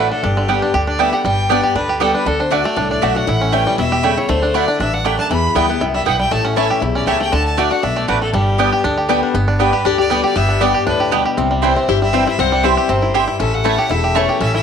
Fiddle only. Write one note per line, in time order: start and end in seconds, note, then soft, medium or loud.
0.00 0.11 B4 medium
0.12 0.25 A4 medium
0.23 0.88 G4 medium
0.88 1.02 D5 medium
1.00 1.15 E5 medium
1.14 1.25 F#5 medium
1.26 1.52 G5 medium
1.51 1.76 D5 medium
1.76 2.00 B4 medium
2.02 2.14 A4 medium
2.15 2.28 B4 medium
2.27 2.41 A4 medium
2.40 2.53 C5 medium
2.52 2.90 D5 medium
2.91 3.04 D5 medium
3.03 3.18 E5 medium
3.17 3.55 F#5 loud
3.54 3.78 G5 loud
3.79 4.19 E5 loud
4.17 4.30 C#5 loud
4.29 4.56 C5 loud
4.55 4.79 D5 loud
4.80 4.95 E5 medium
4.93 5.07 F#5 loud
5.05 5.18 G5 loud
5.19 5.30 A5 loud
5.30 5.57 B5 loud
5.56 5.81 G5 loud
5.94 6.05 E5 medium
6.06 6.19 F#5 loud
6.20 6.33 G5 loud
6.32 6.46 A5 loud
6.45 6.56 F#5 medium
6.57 6.80 E5 loud
6.95 7.07 D5 medium
7.07 7.20 E5 medium
7.21 7.35 G5 medium
7.33 7.45 A5 loud
7.46 7.59 A5 medium
7.58 7.72 D5 medium
7.71 7.84 F#5 medium
7.83 7.98 E5 loud
7.96 8.08 D5 medium
8.08 8.21 B4 medium
8.21 8.33 A4 medium
8.34 9.19 G4 medium
9.61 9.87 B4 medium
9.86 9.99 D5 loud
9.99 10.23 D5 loud
10.25 10.38 D5 loud
10.37 10.63 E5 loud
10.62 10.87 D5 loud
10.87 11.23 B4 medium
11.64 11.90 C5 medium
11.89 12.02 E5 medium
12.02 12.26 E5 medium
12.28 12.41 E5 medium
12.40 12.66 F#5 loud
12.65 12.91 E5 loud
12.90 13.15 C5 medium
13.16 13.39 E5 medium
13.41 13.56 E5 loud
13.54 13.93 F#5 loud
13.91 14.18 E5 loud
14.17 14.41 C#5 medium
14.41 14.54 E5 loud
14.55 14.63 E5 loud